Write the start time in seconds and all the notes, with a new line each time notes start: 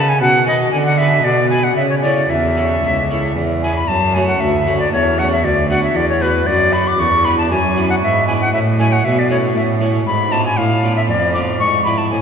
Already playing: C#3 B3 A4 B4 A5
0.09 G#5
0.21 B2 F#5
0.47 B3 A4 B4 D#5
0.72 D3 G#5
0.86 F#5
0.98 B3 G#4 B4 E5
1.24 B2 D5
1.50 B3 G#4 B4 G#5
1.64 F#5
1.75 C#3 E5
1.89 C#5
2.03 C#4 E4 A4 D5
2.29 E2 E5
2.57 C#4 E4 A4
2.82 C#2
3.10 C#4 E4 A4
3.35 E2
3.63 B3 E4 G#4 G#5
3.76 B5
3.88 F#2 A5
4.14 A3 C#4 F#4 G#5
4.28 F#5
4.40 D2 E5
4.67 A3 C#4 F#4
4.79 D5
4.92 E2 C#5
5.19 A3 C#4 F#4 F#5
5.32 E5
5.44 D2 D5
5.70 B3 D4 F#4 F#5
5.84 E5
5.95 E2 D5
6.09 C#5
6.21 B3 D4 F#4 B4
6.47 F#2 D5
6.73 B3 D4 F#4 B5
6.87 D6
6.99 E2 C#6
7.25 B3 D4 E4 B5
7.38 A5
7.50 F#2 G#5
7.76 B3 D4 E4
7.90 F#5
8.02 G#2 E5
8.28 B3 D4 E4 G#5
8.41 F#5
8.53 A2 E5
8.79 A3 C#4 E4 G#5
8.93 F#5
9.04 B2 E5
9.19 D5
9.30 A3 C#4 E4 C#5
9.55 A2 E5
9.80 A3 C#4 E4
10.05 G#2 B5
10.31 B3 D4 F4 A5
10.46 G#5
10.57 A2 F5
10.83 B3 D4 F4
10.97 E5
11.08 F2 D5
11.34 B3 D4 F4 D6
11.60 G#2 C#6
11.85 B3 D4 E4 B5
11.98 A5
12.10 A2 G#5